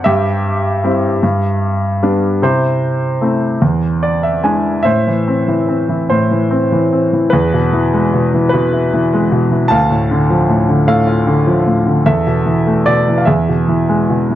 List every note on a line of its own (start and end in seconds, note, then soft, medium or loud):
0.04 1.20 G2 medium
0.04 2.38 G4 medium
0.04 2.49 E5 medium
0.84 1.22 G3 soft
0.84 1.22 C4 soft
0.84 1.23 E4 soft
1.23 2.38 G2 medium
2.03 2.41 G3 soft
2.03 2.41 B3 soft
2.03 2.41 D4 soft
2.42 3.59 C3 medium
2.42 3.21 E4 soft
2.42 3.99 C5 medium
3.22 3.61 A3 soft
3.22 3.61 C4 soft
3.22 3.61 E4 soft
3.62 4.82 E2 soft
4.03 4.22 D5 soft
4.23 4.42 E5 medium
4.43 4.84 G#3 soft
4.43 4.85 D4 soft
4.43 4.85 E4 soft
4.43 4.83 G#5 soft
4.82 6.09 A2 medium
4.82 6.06 C5 soft
4.82 5.64 E5 medium
5.07 5.47 E3 soft
5.28 5.67 C4 soft
5.48 5.88 E3 soft
5.69 6.49 C4 soft
5.89 6.30 E3 soft
6.09 7.29 A2 soft
6.09 7.29 E4 soft
6.09 7.36 C5 medium
6.31 6.71 E3 soft
6.51 6.91 C4 soft
6.72 7.12 E3 soft
6.93 7.32 C4 soft
7.13 7.33 E3 soft
7.30 9.68 E2 medium
7.30 8.50 G#4 soft
7.30 8.48 B4 medium
7.53 8.12 B2 soft
7.73 8.33 E3 soft
7.94 9.12 G#3 soft
8.13 8.52 B2 soft
8.34 8.92 E3 soft
8.49 9.36 B4 medium
8.53 9.30 B2 soft
8.73 9.68 E4 soft
8.94 9.50 E3 medium
9.13 9.70 G#3 medium
9.32 9.70 B2 soft
9.52 9.71 E3 soft
9.68 12.02 D2 medium
9.68 10.84 F5 medium
9.68 10.44 A5 medium
9.90 10.48 A2 soft
10.11 10.68 D3 soft
10.30 11.45 F3 soft
10.49 10.86 A2 soft
10.69 11.25 D3 soft
10.87 11.65 A2 medium
10.87 12.03 A4 soft
10.87 12.10 F5 medium
11.07 12.04 F4 soft
11.27 11.85 D3 soft
11.47 12.05 F3 soft
11.66 12.05 A2 soft
11.87 12.06 D3 soft
12.06 13.24 E2 medium
12.06 13.24 A4 medium
12.06 12.83 E5 medium
12.27 12.85 B2 soft
12.46 13.06 E3 soft
12.67 13.25 A3 soft
12.86 13.26 B2 soft
12.86 13.21 D5 medium
13.08 13.27 E3 soft
13.18 13.26 F5 soft
13.25 14.35 E2 soft
13.25 14.35 G#4 soft
13.25 14.35 E5 medium
13.49 14.08 B2 soft
13.68 14.29 E3 soft
13.89 14.35 G#3 soft
14.10 14.35 B2 soft
14.31 14.35 E3 soft